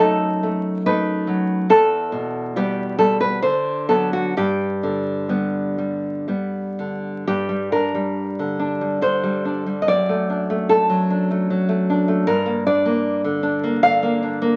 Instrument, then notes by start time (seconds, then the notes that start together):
nylon-string guitar
Already playing: F#2 F#3 A3
0.00 D#4 A4
0.43 A3
0.86 A3 D#4 B4
1.27 F#3
1.70 E2 A4
2.12 B2
2.56 G3 B3 G4
2.98 G3 A4
3.21 B4
3.42 D3 C5
3.89 F#3 B3 A4
4.13 F#4
4.37 G2 G4
4.83 D3
5.29 G3 B3
5.78 G3
6.28 G3 B3
6.79 D3
7.28 G2 G4
7.49 G3
7.72 D4 A#4
7.95 G3
8.39 D3
8.60 D4
8.81 G3
9.01 D3 C5
9.23 G3
9.45 D4
9.66 G3
9.82 D#5
9.88 F#2 D5
10.09 A3
10.30 D4
10.50 A3
10.69 A4
10.90 F#3
11.10 D4
11.31 A3
11.50 F#3
11.69 A3
11.90 D4
12.08 A3
12.27 G2 A#4
12.46 A#3
12.67 D4 D5
12.86 A#3
13.24 D3
13.43 D4
13.63 A#3
13.83 D3 F5
14.03 A#3
14.23 D4
14.42 A#3